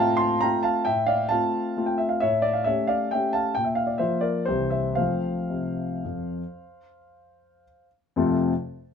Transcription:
Already playing: A2 A3 C4 F5 G5 A5 A#5
0.00 F4
0.17 A5 C6
0.41 A3 C4 F4 G5 A#5
0.63 F5 A5
0.85 A2 E5 G5
1.07 D5 F5
1.29 A3 C4 F4 F5 A5
1.77 A3 C4 F4
1.86 G5
1.98 E5
2.09 F5
2.20 A2 C#5 E5
2.42 D5
2.53 F5
2.64 A3 C#4 G4 C#5 E5
2.87 D5 F5
3.11 A3 C#4 G4 E5 G5
3.33 F5 A5
3.55 A#2 G5
3.65 E5
3.75 F5
3.87 D5
3.98 F3 A#3 F4 C5 E5
4.21 A#4 D5
4.46 C2 E3 G3 C4 G4 C5
4.70 C5 E5
4.95 F3 A3 C4 C5 F5
5.50 C3
6.04 F2
8.16 F2 C3 A3 C4 F4 A4

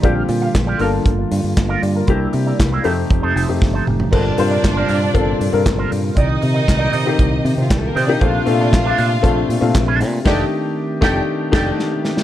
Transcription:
0.02 A#1 D3 G3 A#3 C4 D4 F4 G4 D5, kick, closed hi-hat
0.16 muted clean electric guitar stroke
0.29 A#2, muted clean electric guitar stroke, open hi-hat
0.42 F4 G4 F5
0.55 A#1, kick, snare, clap, closed hi-hat
0.67 F4 G4 D5
0.79 G1 D3 A#3 D4 F4 A4 A#4 D5, open hi-hat
0.94 muted clean electric guitar stroke
1.06 G1, muted clean electric guitar stroke, kick, closed hi-hat
1.18 muted clean electric guitar stroke
1.31 G2, open hi-hat
1.44 G2, muted clean electric guitar stroke
1.57 G1, muted clean electric guitar stroke, kick, snare, clap, closed hi-hat
1.69 F4 A#4 D5 F5
1.82 G2 D5, muted clean electric guitar stroke, open hi-hat
1.95 A#4, muted clean electric guitar stroke
2.07 C2 C3 A#3 D4 E4 G4 A#4 C5, kick, closed hi-hat
2.21 muted clean electric guitar stroke
2.33 C3, muted clean electric guitar stroke, open hi-hat
2.46 E4 A#4 D5
2.60 C2, kick, snare, clap, closed hi-hat
2.72 E4 A#4 C5
2.84 F2 C3 F3 A3 C4 D#4 G4 A4 C5, open hi-hat
2.97 muted clean electric guitar stroke
3.10 F1, muted clean electric guitar stroke, kick, closed hi-hat
3.22 F2 D#4 A4 C5
3.35 F1 D#4 A4 C5, open hi-hat
3.48 F2 A3 C4 D#4 G4, muted clean electric guitar stroke
3.62 G1, muted clean electric guitar stroke, kick, snare
3.74 D#4 A4 C5
3.87 F1, mid tom
4.00 muted clean electric guitar stroke, floor tom
4.11 G1 A#2 C3 G3 A#3 C4 D4 F4 A4 A#4 C5 D5, kick, crash
4.25 muted clean electric guitar stroke
4.37 G2 A#3 C4 F4 C5, muted clean electric guitar stroke, open hi-hat
4.51 F4 A#4 D5
4.64 G1, kick, snare, clap, closed hi-hat
4.76 F4 A#4 C5
4.89 G2 F4 A#4 C5, open hi-hat
5.02 muted clean electric guitar stroke
5.14 G1 A#3 C4 F4 A4, muted clean electric guitar stroke, kick, closed hi-hat
5.28 muted clean electric guitar stroke
5.41 G2, open hi-hat
5.52 G2 A#3 C4 F4 A#4
5.66 G1, muted clean electric guitar stroke, kick, snare, clap, closed hi-hat
5.78 F4 A#4 C5
5.92 G2, muted clean electric guitar stroke, open hi-hat
6.04 muted clean electric guitar stroke
6.16 C2 D#3 C4 D#4 A#4 D5 D#5, kick, closed hi-hat
6.30 muted clean electric guitar stroke
6.42 C3, muted clean electric guitar stroke, open hi-hat
6.54 D#4 A#4 D#5
6.67 C2, muted clean electric guitar stroke, kick, snare, clap, closed hi-hat
6.79 D#4 A#4 D5
6.93 C3 D#4 A#4 D5, open hi-hat
7.05 A#3 C4 D#4 G4, muted clean electric guitar stroke
7.19 C2, muted clean electric guitar stroke, kick, closed hi-hat
7.31 muted clean electric guitar stroke
7.45 C3, open hi-hat
7.57 C3, muted clean electric guitar stroke
7.62 F4
7.70 C2 G3 G4, muted clean electric guitar stroke, kick, snare, clap, closed hi-hat
7.79 A3 A4, muted clean electric guitar stroke
7.87 A#3 A#4
7.95 C3 C4 D#4 A#4 C5 D5, open hi-hat
8.04 A#3 D4 D5
8.08 D4 D#4 G4 D#5, muted clean electric guitar stroke
8.20 A#1 A3 C4 D4 F4 A4 C5 F5, kick, closed hi-hat
8.35 muted clean electric guitar stroke
8.46 A#2 A3 C4 D4 F4, muted clean electric guitar stroke, open hi-hat
8.60 D4 A4 D5
8.72 A#1, muted clean electric guitar stroke, kick, snare, clap, closed hi-hat
8.85 D4 A4 C5
8.98 A#2 D4 A4 C5, open hi-hat
9.11 muted clean electric guitar stroke
9.23 A#1 A3 C4 D4 F4, muted clean electric guitar stroke, kick, closed hi-hat
9.36 muted clean electric guitar stroke
9.49 A#2, open hi-hat
9.60 A#2 A3 C4 D4 F4, muted clean electric guitar stroke
9.74 A#1, muted clean electric guitar stroke, kick, snare, clap, closed hi-hat
9.87 D4 A4 C5
10.00 A#2, muted clean electric guitar stroke, open hi-hat
10.13 muted clean electric guitar stroke
10.25 F1 D#3 A3 D4 D#4 G4 A4 D5 G5, kick, snare, crash
11.01 F1 A3 D4 D#4 G4 A4 D5 G5, kick, snare
11.51 F1 A3 D4 D#4 G4 A4 D5 G5, kick, snare, crash
11.79 snare
12.05 snare
12.17 snare

